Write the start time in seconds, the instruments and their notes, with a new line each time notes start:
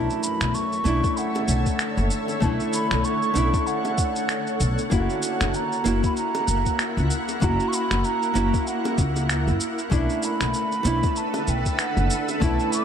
Already playing: ambient pad D3 A4 C#5 E5, nylon-string guitar A3 C#4 D4 E4, flute A5
0.10 shaker
0.23 flute B5, shaker
0.41 upright bass B1, finger snap, shaker
0.54 flute C#6, shaker
0.72 shaker
0.84 upright bass B1, nylon-string guitar A3 C#4 D4 E4, shaker
1.04 kick, shaker
1.17 flute F#5, shaker
1.35 high bongo, shaker
1.48 upright bass B1, shaker
1.66 kick, shaker
1.79 finger snap, shaker
1.97 upright bass F#1, shaker
2.10 shaker
2.28 high bongo, shaker
2.40 upright bass B1, nylon-string guitar A3 C#4 D4 E4, ambient pad F#5, flute A5, kick, shaker
2.60 shaker
2.73 flute B5, shaker
2.91 upright bass B1, finger snap, shaker
3.04 flute C#6, shaker
3.22 shaker
3.34 upright bass B1, nylon-string guitar A3 C#4 D4 E4, shaker
3.54 kick, shaker
3.67 flute F#5, shaker
3.85 high bongo, shaker
3.98 kick, shaker
4.16 shaker
4.29 finger snap, shaker
4.47 shaker
4.60 upright bass B1, shaker
4.78 shaker
4.90 upright bass F#1, nylon-string guitar A#3 C#4 E4 F#4, ambient pad A#3 E4, flute F#5, kick, shaker
5.10 shaker
5.22 shaker
5.41 upright bass F#1, finger snap, shaker
5.54 flute A#5, shaker
5.72 shaker
5.84 upright bass F#1, nylon-string guitar A#3 C#4 E4 F#4, shaker
6.04 flute B5, kick, shaker
6.17 flute A#5, shaker
6.35 high bongo, shaker
6.48 upright bass F#1, shaker
6.66 kick, shaker
6.79 finger snap, shaker
6.97 upright bass C#2, shaker
7.10 shaker
7.28 high bongo, shaker
7.40 upright bass F#1, nylon-string guitar A#3 C#4 E4 F#4, flute A#5, kick, shaker
7.60 shaker
7.68 flute C#6
7.73 flute B5, shaker
7.91 upright bass F#1, finger snap, shaker
8.04 flute A#5, shaker
8.23 shaker
8.34 upright bass F#1, nylon-string guitar A#3 C#4 E4 F#4, shaker
8.54 kick, shaker
8.67 flute F#5, shaker
8.85 high bongo, shaker
8.98 upright bass C#2, kick, shaker
9.16 high bongo, shaker
9.29 finger snap, shaker
9.47 upright bass F#2, shaker
9.60 shaker
9.78 shaker
9.90 upright bass B1, ambient pad D3 A4 B4 E5, nylon-string guitar A3 C#4 D4 E4, flute E5, kick, shaker
10.10 shaker
10.23 flute B5, shaker
10.41 upright bass B1, finger snap, shaker
10.54 shaker
10.72 shaker
10.83 upright bass B1, nylon-string guitar A3 C#4 D4 E4, shaker
11.03 kick, shaker
11.16 flute A5, shaker
11.34 high bongo, shaker
11.43 flute A5, shaker
11.48 upright bass B1, flute G5
11.66 kick, shaker
11.79 flute F#5, finger snap, shaker
11.97 upright bass F#1, shaker
12.10 shaker
12.28 high bongo, shaker
12.40 upright bass B1, nylon-string guitar A3 C#4 D4 E4, flute A5, kick, shaker
12.59 shaker
12.73 flute D6, shaker